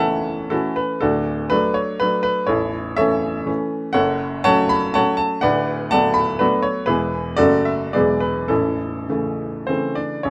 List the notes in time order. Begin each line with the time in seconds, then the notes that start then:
Already playing: F#1 F#2 E3 A4 C#5 E5 F#5 A5
0.00 A3 C#4
0.50 E3 A3 C#4 E4 F#4 A4
0.76 B4
1.01 D1 D2 D4 F#4 A4
1.50 F#3 A3 D4 B4
1.74 C#5
2.00 F#3 A3 D4 B4
2.23 B4
2.47 A0 A1 E4 A4 C#5
2.96 E3 A3 C#4 A4 C#5 E5
3.46 E3 A3 C#4
3.93 F#1 F#2 A4 C#5 F#5
4.44 F#3 A3 C#4 C#5 F#5 A5
4.69 B5
4.94 F#3 A3 C#4 C#5 F#5 A5
5.17 A5
5.41 D1 D2 B4 D5 F#5
5.91 F#3 A3 B3 D5 F#5 A5
6.14 B5
6.39 F#3 A3 B3 D4 F#4 B4
6.63 C#5
6.86 E1 E2 E3 G#3 B3 E4 G#4 B4
7.37 F#1 F#2 C#3 F#3 A3 F#4 A4 D5
7.65 E5
7.93 E1 E2 E3 F#3 G#3 G#4 B4 D5
8.20 B4
8.48 A0 A1 C#4 E4 A4
9.09 C#3 E3 A3
9.67 C#3 E3 A3 C4 C5
9.95 D4 D5
10.23 A0 A1 C#4 C#5